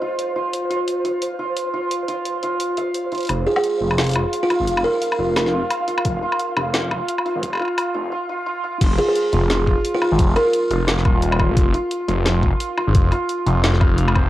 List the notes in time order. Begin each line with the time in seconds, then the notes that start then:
Already playing: C5
0.01 F4
0.19 closed hi-hat
0.36 F4
0.53 closed hi-hat
0.70 F4, closed hi-hat
0.88 closed hi-hat
1.05 F4, closed hi-hat
1.22 closed hi-hat
1.39 F4
1.57 closed hi-hat
1.74 F4
1.91 closed hi-hat
2.08 F4, closed hi-hat
2.26 closed hi-hat
2.43 F4, closed hi-hat
2.60 closed hi-hat
2.77 F5, closed hi-hat
2.95 closed hi-hat
3.12 F4, closed hi-hat
3.15 closed hi-hat
3.18 closed hi-hat
3.21 closed hi-hat
3.23 closed hi-hat
3.25 closed hi-hat
3.27 F1, closed hi-hat
3.29 F5, closed hi-hat, low woodblock
3.47 F4 G#4
3.56 G#4, low woodblock
3.64 closed hi-hat
3.81 F1 F4
3.91 low woodblock
3.98 snare, closed hi-hat
4.01 closed hi-hat
4.04 closed hi-hat
4.07 closed hi-hat
4.09 closed hi-hat
4.11 closed hi-hat
4.13 F4, closed hi-hat, low woodblock
4.33 closed hi-hat
4.43 F4
4.50 F4, closed hi-hat, low woodblock
4.60 G#1
4.67 F1, closed hi-hat
4.77 low woodblock
4.84 F4 A#4
5.02 closed hi-hat
5.12 low woodblock
5.19 F1 F4
5.36 snare, closed hi-hat, low woodblock
5.46 snare
5.53 F4
5.70 closed hi-hat, low woodblock
5.88 F4, closed hi-hat
5.98 low woodblock
6.05 F1, kick, closed hi-hat
6.22 F4
6.32 low woodblock
6.40 closed hi-hat
6.57 F1 F4, low woodblock
6.74 snare, closed hi-hat
6.91 F4, kick, low woodblock
7.08 closed hi-hat
7.18 low woodblock
7.25 F4, closed hi-hat
7.35 G#1
7.43 F1, kick, closed hi-hat
7.53 low woodblock
7.55 low woodblock
7.57 low woodblock
7.59 F4, low woodblock
7.62 low woodblock
7.65 low woodblock
7.68 low woodblock
7.78 closed hi-hat, low woodblock
7.94 F1 F4
8.12 F4
8.29 F4
8.46 F4
8.64 F4
8.81 F1, kick, closed hi-hat, crash
8.98 F4 G#4, closed hi-hat
9.08 G#4
9.15 closed hi-hat
9.33 F1 F4, closed hi-hat
9.50 snare, closed hi-hat
9.67 F4, kick
9.85 closed hi-hat
9.94 F4
10.02 F4, low woodblock
10.12 G#1
10.19 F1, kick, closed hi-hat
10.36 F4 A#4, closed hi-hat, low woodblock
10.53 closed hi-hat
10.70 F1 F4, closed hi-hat
10.88 snare, closed hi-hat
10.98 snare
11.05 D#1 F4, kick, low woodblock
11.22 closed hi-hat
11.32 low woodblock
11.39 F4, kick, low woodblock
11.49 A#1
11.57 F1, kick, closed hi-hat
11.74 F4, closed hi-hat
11.91 closed hi-hat
12.08 F1 F4, closed hi-hat
12.26 snare, closed hi-hat
12.43 F4, kick
12.60 closed hi-hat
12.77 F4, low woodblock
12.87 G#1
12.95 F1, kick, closed hi-hat
13.12 F4, closed hi-hat, low woodblock
13.29 closed hi-hat
13.46 F1 F4, closed hi-hat
13.64 snare, closed hi-hat
13.74 snare
13.81 F1 F5, kick, low woodblock
13.98 closed hi-hat
14.08 low woodblock
14.15 C5, kick, low woodblock